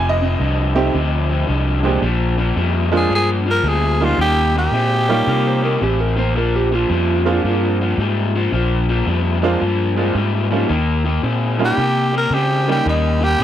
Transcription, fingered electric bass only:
0.00 0.35 F1 loud
0.40 0.89 C2 medium
0.94 1.43 D2 medium
1.49 1.97 C2 medium
2.02 2.51 A#1 medium
2.56 3.05 F2 medium
3.10 3.59 G2 medium
3.63 4.13 D2 medium
4.18 4.67 D#2 medium
4.72 5.21 A#2 medium
5.27 5.76 C3 medium
5.82 6.35 A1 medium
6.35 6.84 A#1 loud
6.90 7.39 F2 medium
7.44 7.93 G2 medium
7.98 8.47 G#2 loud
8.52 9.01 A#1 medium
9.07 9.55 F2 medium
9.62 10.10 G2 medium
10.15 10.64 G#2 medium
10.70 11.18 D#2 medium
11.23 11.72 A#2 medium
11.78 12.26 C3 medium
12.31 12.80 C#3 medium
12.86 13.35 D#2 medium
13.39 13.44 A#2 medium

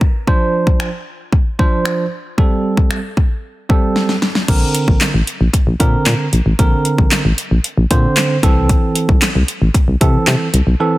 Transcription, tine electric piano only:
0.27 0.89 F3 medium
0.27 0.89 D4 medium
0.27 0.89 C5 medium
1.59 2.05 F3 medium
1.59 2.05 D4 medium
1.59 2.05 C5 medium
2.38 2.99 G3 medium
2.38 2.99 C4 medium
2.38 2.99 A4 medium
3.69 4.15 G3 medium
3.69 4.16 C4 medium
3.69 4.16 A4 medium
4.48 5.10 D3 medium
4.48 5.10 C4 medium
4.48 5.10 A#4 medium
5.80 6.26 D3 medium
5.80 6.26 C4 medium
5.80 6.26 A#4 medium
6.59 7.20 D3 medium
6.59 7.20 C4 medium
6.59 7.20 A#4 medium
7.90 8.36 D3 medium
7.90 8.37 C4 medium
7.90 8.37 C5 medium
8.43 9.27 E3 medium
8.43 9.27 C4 medium
8.43 9.28 A4 medium
10.01 10.47 E3 medium
10.01 10.47 C4 medium
10.01 10.47 A4 loud
10.80 10.98 E3 medium
10.80 10.98 C4 medium
10.80 10.98 A4 medium

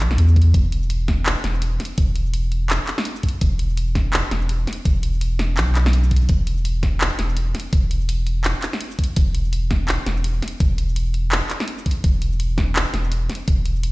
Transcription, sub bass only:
0.01 0.17 B1 medium
0.18 0.53 E2 loud
0.54 1.35 E1 loud
1.44 1.79 E1 medium
1.98 2.79 E1 loud
3.42 4.23 E1 loud
4.31 4.66 E1 medium
4.86 5.59 E1 loud
5.58 6.28 B1 loud
6.29 7.10 E1 loud
7.19 7.54 E1 medium
7.73 8.54 E1 loud
9.17 9.98 E1 loud
10.06 10.41 E1 medium
10.60 11.41 E1 loud
12.04 12.85 E1 loud
12.94 13.29 E1 medium
13.48 13.92 E1 loud

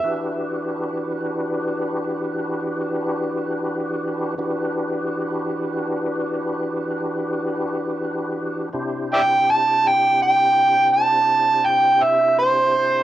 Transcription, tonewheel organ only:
0.03 4.35 E3 medium
0.03 4.35 D4 medium
0.03 4.35 F#4 medium
0.03 4.35 G4 medium
0.03 4.35 B4 medium
4.38 8.69 E3 medium
4.38 8.69 D4 medium
4.38 8.69 F#4 medium
4.38 8.70 G4 medium
4.38 8.69 B4 medium
8.73 13.03 C3 medium
8.73 13.03 D4 medium
8.73 13.03 E4 medium
8.73 13.03 G4 medium
8.73 13.03 C5 medium

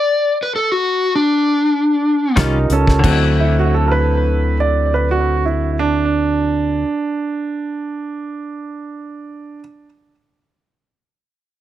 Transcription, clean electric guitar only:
2.36 2.57 D#3 medium
2.36 2.57 G3 medium
2.36 2.57 C#4 medium
2.36 2.58 F4 loud
2.99 6.83 D3 medium
3.05 6.88 F#3 medium
3.05 6.92 C4 medium
3.12 6.96 E4 medium

